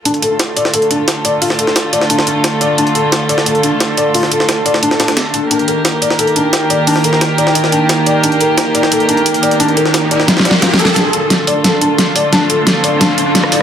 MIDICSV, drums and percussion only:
0, 0, Header, 1, 2, 480
1, 0, Start_track
1, 0, Tempo, 340909
1, 76, Time_signature, 4, 2, 24, 8
1, 19184, End_track
2, 0, Start_track
2, 0, Title_t, "Drums"
2, 76, Note_on_c, 9, 42, 87
2, 77, Note_off_c, 9, 42, 0
2, 77, Note_on_c, 9, 42, 92
2, 196, Note_off_c, 9, 42, 0
2, 196, Note_on_c, 9, 42, 42
2, 316, Note_off_c, 9, 42, 0
2, 316, Note_on_c, 9, 42, 65
2, 457, Note_off_c, 9, 42, 0
2, 556, Note_on_c, 9, 38, 108
2, 556, Note_on_c, 9, 42, 80
2, 557, Note_off_c, 9, 42, 0
2, 557, Note_on_c, 9, 42, 92
2, 697, Note_off_c, 9, 38, 0
2, 698, Note_off_c, 9, 42, 0
2, 796, Note_on_c, 9, 42, 64
2, 797, Note_off_c, 9, 42, 0
2, 797, Note_on_c, 9, 42, 62
2, 916, Note_on_c, 9, 38, 55
2, 937, Note_off_c, 9, 42, 0
2, 1036, Note_on_c, 9, 42, 83
2, 1057, Note_off_c, 9, 38, 0
2, 1156, Note_off_c, 9, 42, 0
2, 1156, Note_on_c, 9, 42, 44
2, 1276, Note_off_c, 9, 42, 0
2, 1276, Note_on_c, 9, 42, 70
2, 1277, Note_off_c, 9, 42, 0
2, 1277, Note_on_c, 9, 42, 66
2, 1418, Note_off_c, 9, 42, 0
2, 1516, Note_on_c, 9, 38, 113
2, 1516, Note_on_c, 9, 42, 87
2, 1517, Note_off_c, 9, 42, 0
2, 1517, Note_on_c, 9, 42, 89
2, 1657, Note_off_c, 9, 38, 0
2, 1658, Note_off_c, 9, 42, 0
2, 1756, Note_on_c, 9, 42, 67
2, 1897, Note_off_c, 9, 42, 0
2, 1995, Note_on_c, 9, 46, 78
2, 1996, Note_on_c, 9, 42, 84
2, 2115, Note_on_c, 9, 38, 45
2, 2136, Note_off_c, 9, 46, 0
2, 2137, Note_off_c, 9, 42, 0
2, 2235, Note_on_c, 9, 42, 64
2, 2236, Note_off_c, 9, 42, 0
2, 2236, Note_on_c, 9, 42, 63
2, 2256, Note_off_c, 9, 38, 0
2, 2356, Note_on_c, 9, 38, 44
2, 2377, Note_off_c, 9, 42, 0
2, 2475, Note_off_c, 9, 38, 0
2, 2475, Note_on_c, 9, 38, 112
2, 2475, Note_on_c, 9, 42, 84
2, 2476, Note_off_c, 9, 42, 0
2, 2476, Note_on_c, 9, 42, 89
2, 2616, Note_off_c, 9, 38, 0
2, 2616, Note_off_c, 9, 42, 0
2, 2715, Note_on_c, 9, 42, 61
2, 2716, Note_off_c, 9, 42, 0
2, 2716, Note_on_c, 9, 42, 66
2, 2836, Note_on_c, 9, 38, 50
2, 2857, Note_off_c, 9, 42, 0
2, 2955, Note_on_c, 9, 42, 91
2, 2956, Note_off_c, 9, 42, 0
2, 2956, Note_on_c, 9, 42, 82
2, 2977, Note_off_c, 9, 38, 0
2, 3077, Note_on_c, 9, 38, 59
2, 3097, Note_off_c, 9, 42, 0
2, 3195, Note_on_c, 9, 42, 64
2, 3197, Note_off_c, 9, 42, 0
2, 3197, Note_on_c, 9, 42, 67
2, 3218, Note_off_c, 9, 38, 0
2, 3337, Note_off_c, 9, 42, 0
2, 3435, Note_on_c, 9, 42, 90
2, 3436, Note_off_c, 9, 42, 0
2, 3436, Note_on_c, 9, 38, 113
2, 3436, Note_on_c, 9, 42, 86
2, 3577, Note_off_c, 9, 38, 0
2, 3577, Note_off_c, 9, 42, 0
2, 3674, Note_on_c, 9, 42, 63
2, 3676, Note_off_c, 9, 42, 0
2, 3676, Note_on_c, 9, 42, 69
2, 3817, Note_off_c, 9, 42, 0
2, 3916, Note_on_c, 9, 42, 85
2, 4037, Note_off_c, 9, 42, 0
2, 4037, Note_on_c, 9, 42, 41
2, 4156, Note_off_c, 9, 42, 0
2, 4156, Note_on_c, 9, 42, 63
2, 4297, Note_off_c, 9, 42, 0
2, 4395, Note_on_c, 9, 42, 85
2, 4396, Note_off_c, 9, 42, 0
2, 4396, Note_on_c, 9, 38, 114
2, 4396, Note_on_c, 9, 42, 85
2, 4537, Note_off_c, 9, 38, 0
2, 4537, Note_off_c, 9, 42, 0
2, 4636, Note_on_c, 9, 42, 66
2, 4756, Note_on_c, 9, 38, 57
2, 4777, Note_off_c, 9, 42, 0
2, 4876, Note_on_c, 9, 42, 86
2, 4897, Note_off_c, 9, 38, 0
2, 4997, Note_off_c, 9, 42, 0
2, 4997, Note_on_c, 9, 42, 43
2, 5116, Note_off_c, 9, 42, 0
2, 5116, Note_on_c, 9, 42, 60
2, 5117, Note_off_c, 9, 42, 0
2, 5117, Note_on_c, 9, 42, 70
2, 5258, Note_off_c, 9, 42, 0
2, 5356, Note_on_c, 9, 38, 109
2, 5356, Note_on_c, 9, 42, 88
2, 5497, Note_off_c, 9, 38, 0
2, 5497, Note_off_c, 9, 42, 0
2, 5596, Note_on_c, 9, 42, 64
2, 5597, Note_off_c, 9, 42, 0
2, 5597, Note_on_c, 9, 42, 65
2, 5738, Note_off_c, 9, 42, 0
2, 5836, Note_on_c, 9, 42, 85
2, 5837, Note_on_c, 9, 46, 80
2, 5956, Note_on_c, 9, 38, 45
2, 5976, Note_off_c, 9, 42, 0
2, 5978, Note_off_c, 9, 46, 0
2, 6075, Note_on_c, 9, 42, 62
2, 6077, Note_off_c, 9, 42, 0
2, 6077, Note_on_c, 9, 42, 66
2, 6097, Note_off_c, 9, 38, 0
2, 6197, Note_on_c, 9, 38, 46
2, 6217, Note_off_c, 9, 42, 0
2, 6316, Note_on_c, 9, 42, 80
2, 6317, Note_off_c, 9, 38, 0
2, 6317, Note_off_c, 9, 42, 0
2, 6317, Note_on_c, 9, 38, 109
2, 6317, Note_on_c, 9, 42, 82
2, 6458, Note_off_c, 9, 38, 0
2, 6458, Note_off_c, 9, 42, 0
2, 6556, Note_on_c, 9, 42, 67
2, 6557, Note_off_c, 9, 42, 0
2, 6557, Note_on_c, 9, 42, 58
2, 6676, Note_on_c, 9, 38, 53
2, 6698, Note_off_c, 9, 42, 0
2, 6796, Note_on_c, 9, 42, 80
2, 6797, Note_off_c, 9, 42, 0
2, 6797, Note_on_c, 9, 42, 89
2, 6817, Note_off_c, 9, 38, 0
2, 6916, Note_on_c, 9, 38, 54
2, 6938, Note_off_c, 9, 42, 0
2, 7036, Note_off_c, 9, 38, 0
2, 7036, Note_on_c, 9, 38, 106
2, 7036, Note_on_c, 9, 42, 79
2, 7037, Note_off_c, 9, 42, 0
2, 7037, Note_on_c, 9, 42, 60
2, 7156, Note_off_c, 9, 38, 0
2, 7156, Note_off_c, 9, 42, 0
2, 7156, Note_on_c, 9, 38, 96
2, 7156, Note_on_c, 9, 42, 79
2, 7276, Note_off_c, 9, 38, 0
2, 7276, Note_off_c, 9, 42, 0
2, 7276, Note_on_c, 9, 38, 112
2, 7276, Note_on_c, 9, 42, 86
2, 7417, Note_off_c, 9, 38, 0
2, 7417, Note_off_c, 9, 42, 0
2, 7516, Note_on_c, 9, 42, 66
2, 7657, Note_off_c, 9, 42, 0
2, 7756, Note_on_c, 9, 42, 89
2, 7757, Note_off_c, 9, 42, 0
2, 7757, Note_on_c, 9, 42, 85
2, 7876, Note_off_c, 9, 42, 0
2, 7876, Note_on_c, 9, 42, 41
2, 7995, Note_off_c, 9, 42, 0
2, 7995, Note_on_c, 9, 42, 66
2, 7996, Note_off_c, 9, 42, 0
2, 7996, Note_on_c, 9, 42, 61
2, 8137, Note_off_c, 9, 42, 0
2, 8234, Note_on_c, 9, 38, 117
2, 8234, Note_on_c, 9, 42, 87
2, 8236, Note_off_c, 9, 42, 0
2, 8236, Note_on_c, 9, 42, 81
2, 8375, Note_off_c, 9, 38, 0
2, 8377, Note_off_c, 9, 42, 0
2, 8474, Note_on_c, 9, 42, 66
2, 8476, Note_off_c, 9, 42, 0
2, 8476, Note_on_c, 9, 42, 59
2, 8595, Note_on_c, 9, 38, 57
2, 8617, Note_off_c, 9, 42, 0
2, 8714, Note_on_c, 9, 42, 80
2, 8715, Note_off_c, 9, 42, 0
2, 8715, Note_on_c, 9, 42, 88
2, 8736, Note_off_c, 9, 38, 0
2, 8834, Note_off_c, 9, 42, 0
2, 8834, Note_on_c, 9, 42, 43
2, 8954, Note_off_c, 9, 42, 0
2, 8954, Note_on_c, 9, 42, 70
2, 8955, Note_off_c, 9, 42, 0
2, 8955, Note_on_c, 9, 42, 61
2, 9096, Note_off_c, 9, 42, 0
2, 9194, Note_on_c, 9, 38, 115
2, 9194, Note_on_c, 9, 42, 85
2, 9196, Note_off_c, 9, 42, 0
2, 9196, Note_on_c, 9, 42, 85
2, 9334, Note_off_c, 9, 38, 0
2, 9337, Note_off_c, 9, 42, 0
2, 9434, Note_on_c, 9, 42, 66
2, 9437, Note_off_c, 9, 42, 0
2, 9437, Note_on_c, 9, 42, 63
2, 9577, Note_off_c, 9, 42, 0
2, 9674, Note_on_c, 9, 46, 82
2, 9676, Note_on_c, 9, 42, 88
2, 9794, Note_on_c, 9, 38, 46
2, 9815, Note_off_c, 9, 46, 0
2, 9817, Note_off_c, 9, 42, 0
2, 9914, Note_on_c, 9, 42, 67
2, 9916, Note_off_c, 9, 42, 0
2, 9916, Note_on_c, 9, 42, 62
2, 9935, Note_off_c, 9, 38, 0
2, 10035, Note_on_c, 9, 38, 43
2, 10057, Note_off_c, 9, 42, 0
2, 10154, Note_off_c, 9, 38, 0
2, 10154, Note_on_c, 9, 38, 110
2, 10154, Note_on_c, 9, 42, 82
2, 10155, Note_off_c, 9, 42, 0
2, 10155, Note_on_c, 9, 42, 91
2, 10295, Note_off_c, 9, 38, 0
2, 10296, Note_off_c, 9, 42, 0
2, 10394, Note_on_c, 9, 42, 65
2, 10395, Note_off_c, 9, 42, 0
2, 10395, Note_on_c, 9, 42, 61
2, 10514, Note_on_c, 9, 38, 50
2, 10536, Note_off_c, 9, 42, 0
2, 10634, Note_on_c, 9, 42, 92
2, 10655, Note_off_c, 9, 38, 0
2, 10754, Note_on_c, 9, 38, 57
2, 10775, Note_off_c, 9, 42, 0
2, 10874, Note_on_c, 9, 42, 69
2, 10876, Note_off_c, 9, 42, 0
2, 10876, Note_on_c, 9, 42, 64
2, 10895, Note_off_c, 9, 38, 0
2, 11017, Note_off_c, 9, 42, 0
2, 11113, Note_on_c, 9, 38, 119
2, 11113, Note_on_c, 9, 42, 87
2, 11116, Note_off_c, 9, 42, 0
2, 11116, Note_on_c, 9, 42, 87
2, 11254, Note_off_c, 9, 38, 0
2, 11257, Note_off_c, 9, 42, 0
2, 11354, Note_on_c, 9, 42, 70
2, 11356, Note_off_c, 9, 42, 0
2, 11356, Note_on_c, 9, 42, 65
2, 11497, Note_off_c, 9, 42, 0
2, 11594, Note_on_c, 9, 42, 89
2, 11597, Note_off_c, 9, 42, 0
2, 11597, Note_on_c, 9, 42, 93
2, 11714, Note_off_c, 9, 42, 0
2, 11714, Note_on_c, 9, 42, 42
2, 11834, Note_off_c, 9, 42, 0
2, 11834, Note_on_c, 9, 42, 66
2, 11837, Note_off_c, 9, 42, 0
2, 11837, Note_on_c, 9, 42, 66
2, 11978, Note_off_c, 9, 42, 0
2, 12074, Note_on_c, 9, 38, 117
2, 12074, Note_on_c, 9, 42, 86
2, 12076, Note_off_c, 9, 42, 0
2, 12076, Note_on_c, 9, 42, 95
2, 12215, Note_off_c, 9, 38, 0
2, 12217, Note_off_c, 9, 42, 0
2, 12315, Note_on_c, 9, 42, 68
2, 12316, Note_off_c, 9, 42, 0
2, 12316, Note_on_c, 9, 42, 62
2, 12435, Note_on_c, 9, 38, 55
2, 12457, Note_off_c, 9, 42, 0
2, 12554, Note_on_c, 9, 42, 83
2, 12556, Note_off_c, 9, 42, 0
2, 12556, Note_on_c, 9, 42, 94
2, 12576, Note_off_c, 9, 38, 0
2, 12675, Note_off_c, 9, 42, 0
2, 12675, Note_on_c, 9, 42, 43
2, 12795, Note_off_c, 9, 42, 0
2, 12795, Note_on_c, 9, 42, 79
2, 12796, Note_off_c, 9, 42, 0
2, 12796, Note_on_c, 9, 42, 67
2, 12916, Note_off_c, 9, 42, 0
2, 12916, Note_on_c, 9, 42, 38
2, 13036, Note_off_c, 9, 42, 0
2, 13036, Note_on_c, 9, 42, 97
2, 13156, Note_off_c, 9, 42, 0
2, 13156, Note_on_c, 9, 42, 75
2, 13275, Note_off_c, 9, 42, 0
2, 13275, Note_on_c, 9, 42, 67
2, 13276, Note_off_c, 9, 42, 0
2, 13276, Note_on_c, 9, 42, 41
2, 13395, Note_off_c, 9, 42, 0
2, 13395, Note_on_c, 9, 42, 63
2, 13516, Note_off_c, 9, 42, 0
2, 13516, Note_on_c, 9, 42, 82
2, 13636, Note_off_c, 9, 42, 0
2, 13636, Note_on_c, 9, 42, 39
2, 13755, Note_off_c, 9, 42, 0
2, 13755, Note_on_c, 9, 42, 65
2, 13875, Note_on_c, 9, 38, 46
2, 13896, Note_off_c, 9, 42, 0
2, 13995, Note_off_c, 9, 38, 0
2, 13995, Note_on_c, 9, 38, 114
2, 13995, Note_on_c, 9, 42, 87
2, 13996, Note_off_c, 9, 42, 0
2, 13996, Note_on_c, 9, 42, 94
2, 14136, Note_off_c, 9, 38, 0
2, 14137, Note_off_c, 9, 42, 0
2, 14236, Note_on_c, 9, 42, 65
2, 14356, Note_on_c, 9, 38, 51
2, 14377, Note_off_c, 9, 42, 0
2, 14476, Note_off_c, 9, 38, 0
2, 14476, Note_on_c, 9, 38, 69
2, 14476, Note_on_c, 9, 42, 95
2, 14596, Note_off_c, 9, 38, 0
2, 14596, Note_on_c, 9, 38, 58
2, 14617, Note_off_c, 9, 42, 0
2, 14635, Note_off_c, 9, 38, 0
2, 14635, Note_on_c, 9, 38, 71
2, 14716, Note_off_c, 9, 38, 0
2, 14716, Note_on_c, 9, 38, 105
2, 14716, Note_on_c, 9, 42, 70
2, 14796, Note_off_c, 9, 38, 0
2, 14796, Note_on_c, 9, 38, 78
2, 14857, Note_off_c, 9, 42, 0
2, 14937, Note_off_c, 9, 38, 0
2, 14956, Note_on_c, 9, 38, 115
2, 14956, Note_on_c, 9, 42, 87
2, 15097, Note_off_c, 9, 38, 0
2, 15097, Note_off_c, 9, 42, 0
2, 15115, Note_on_c, 9, 38, 93
2, 15196, Note_on_c, 9, 42, 70
2, 15256, Note_off_c, 9, 38, 0
2, 15276, Note_on_c, 9, 38, 103
2, 15337, Note_off_c, 9, 42, 0
2, 15417, Note_off_c, 9, 38, 0
2, 15435, Note_on_c, 9, 38, 47
2, 15435, Note_on_c, 9, 42, 97
2, 15576, Note_off_c, 9, 38, 0
2, 15576, Note_off_c, 9, 42, 0
2, 15674, Note_on_c, 9, 42, 70
2, 15815, Note_off_c, 9, 42, 0
2, 15915, Note_on_c, 9, 38, 48
2, 15915, Note_on_c, 9, 42, 95
2, 16056, Note_off_c, 9, 38, 0
2, 16056, Note_off_c, 9, 42, 0
2, 16155, Note_on_c, 9, 46, 70
2, 16295, Note_off_c, 9, 46, 0
2, 16394, Note_on_c, 9, 38, 51
2, 16394, Note_on_c, 9, 42, 97
2, 16535, Note_off_c, 9, 38, 0
2, 16535, Note_off_c, 9, 42, 0
2, 16635, Note_on_c, 9, 42, 67
2, 16776, Note_off_c, 9, 42, 0
2, 16874, Note_on_c, 9, 38, 49
2, 16874, Note_on_c, 9, 42, 92
2, 17015, Note_off_c, 9, 38, 0
2, 17015, Note_off_c, 9, 42, 0
2, 17115, Note_on_c, 9, 46, 74
2, 17256, Note_off_c, 9, 46, 0
2, 17355, Note_on_c, 9, 38, 53
2, 17355, Note_on_c, 9, 42, 92
2, 17495, Note_off_c, 9, 38, 0
2, 17495, Note_off_c, 9, 42, 0
2, 17596, Note_on_c, 9, 42, 63
2, 17736, Note_off_c, 9, 42, 0
2, 17835, Note_on_c, 9, 38, 54
2, 17835, Note_on_c, 9, 42, 92
2, 17976, Note_off_c, 9, 38, 0
2, 17976, Note_off_c, 9, 42, 0
2, 18075, Note_on_c, 9, 46, 71
2, 18216, Note_off_c, 9, 46, 0
2, 18315, Note_on_c, 9, 38, 55
2, 18315, Note_on_c, 9, 42, 92
2, 18456, Note_off_c, 9, 38, 0
2, 18456, Note_off_c, 9, 42, 0
2, 18555, Note_on_c, 9, 42, 62
2, 18696, Note_off_c, 9, 42, 0
2, 18796, Note_on_c, 9, 38, 55
2, 18796, Note_on_c, 9, 42, 94
2, 18916, Note_on_c, 9, 37, 49
2, 18937, Note_off_c, 9, 38, 0
2, 18937, Note_off_c, 9, 42, 0
2, 19036, Note_on_c, 9, 46, 76
2, 19057, Note_off_c, 9, 37, 0
2, 19176, Note_off_c, 9, 46, 0
2, 19184, End_track
0, 0, End_of_file